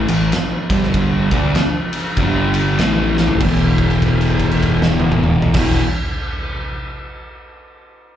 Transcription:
0.08 A1 A2 E3, ride
0.32 snare, ride
0.70 G1 G2 D3 G3, kick, ride
0.83 snare
0.94 kick, ride
1.31 D2 D3 A3 D4, kick, ride
1.55 snare, ride
1.93 ride
2.17 G1 G2 D3 G3, kick, ride
2.54 ride
2.79 A1 A2 E3 A3, snare, ride
3.17 snare
3.28 floor tom
3.40 E1 E2 B2, kick, crash
3.45 E3
3.78 kick, crash
3.90 crash
4.02 kick, crash
4.21 crash
4.39 kick, crash
4.51 crash
4.62 kick, crash
4.82 snare
5.00 high tom
5.12 mid tom
5.23 mid tom
5.42 floor tom
5.54 E1 E2 B2, kick, snare, crash
5.58 E3

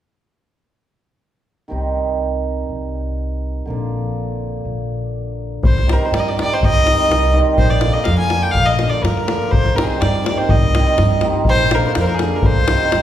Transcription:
1.68 C2 D#3 G3 C4 D#4
2.69 C2
3.66 A#1 D3 F3 A#3
3.70 D4
4.65 A#1
5.63 C2 C5, davul low
5.78 davul high
5.87 D#3 G3 C4 D#4, davul high
5.92 A#4
6.05 C5
6.11 G2 D5, davul high
6.20 D#5
6.29 D5, davul high
6.36 D#3 G3 C4 D#4, davul high
6.41 D5
6.54 C5
6.60 C2 D#5, davul low
6.76 davul high
6.84 D#3 G3 C4 D#4, davul high
7.09 C2, davul high
7.23 davul high
7.32 D#3 G3 C4 D#4
7.57 A#1 C5, davul low
7.70 D5, davul high
7.81 D3 F3 A#3 D4, davul high
7.93 D#5
8.04 F2 F5, davul high
8.18 G#5, davul high
8.29 D3 F3 A#3 D4, davul high
8.42 G5
8.51 F5, davul low
8.55 A#1
8.66 D#5, davul high
8.78 D3 F3 A#3 D4, davul high
8.90 D5
9.02 G2 A#4, davul high
9.17 davul high
9.27 D3 F3 A#3 D4, davul high
9.42 davul high
9.51 C2 C5, davul low
9.66 davul high
9.75 D#3 G3 C4 D#4 A#4, davul high
9.82 G#4 A#4
9.89 C5
10.01 G2 D5, davul high
10.15 davul high
10.24 D#3 G3 C4 D#4 D5, davul high
10.38 C5
10.49 C2 D#5, davul low
10.63 davul high
10.74 D#3 G3 C4 D#4, davul high
10.98 G2, davul high
11.11 davul high
11.21 D#3 G3 C4 D#4, davul high
11.45 A#1, davul low
11.49 C5
11.60 davul high
11.71 D3 F3 A#3 D4 A#4, davul high
11.87 C5
11.95 F2, davul high
12.00 A#4 C5
12.07 A#4, davul high
12.14 G#4
12.19 D3 F3 A#3 D4, davul high
12.35 A#4
12.43 C2 C5, davul low
12.68 D#3 G3 C4 D#4, davul high
12.92 G2, davul high

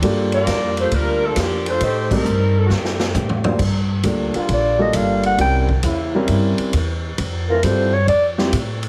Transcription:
0.02 G2 G3 A#3 D4 F4 A4, kick, ride
0.32 A#3 F4 G4 D5, ride
0.46 F2, kick, snare, hi-hat pedal, ride
0.77 A3 D4 F4 C5, ride
0.91 D2 G3 D4 F4 A#4, kick, ride
1.25 F3 A#3 D4 A4
1.36 F2 F3 A#3 D4 G4, kick, snare, hi-hat pedal, ride
1.66 A3 D4 C5, ride
1.70 F4
1.80 A2 A3 D#4 G4 C5, kick, ride
2.11 G3 A3 C4 D#4 G4 A#4, kick, crash
2.25 G2, hi-hat pedal
2.58 G3 C4 D#4 A4
2.66 F#2 F#4, snare
2.72 D3 A3 C4 G4
2.85 snare
2.99 snare
3.14 A2, floor tom, hi-hat pedal
3.29 floor tom
3.44 G3 A#3 D4 F4 C5, floor tom
3.59 G2, kick, crash
4.03 D2 G3 A#3 D4 F4 A4, kick, hi-hat pedal, ride
4.34 D3 G3 A#3 F4, muted upright bass stroke, ride
4.49 A#1, kick, ride
4.53 D5
4.79 G3 A#3 D4 F4 A4 D#5
4.93 G1 F5, kick, hi-hat pedal, ride
5.23 F#5, ride
5.38 C2 G3 C4 C#4 E4 A#4 G5, kick, ride
5.69 kick
5.83 E2 C#3 A#3 E4, kick, hi-hat pedal, ride
6.15 G3 C4 C#4 E4 A#4
6.28 G2, kick, ride
6.58 muted upright bass stroke, ride
6.73 E2, kick, hi-hat pedal, ride
7.18 F2, kick, ride
7.49 E3 A3 C4 F4 A#4
7.63 G2 G3 C4 E4 F4 A4 C5, kick, hi-hat pedal, ride
7.93 C#5
8.07 F2 D5, kick, ride
8.38 G3 C4 E4 F4 G4, snare
8.52 A2, kick, hi-hat pedal, ride
8.83 ride

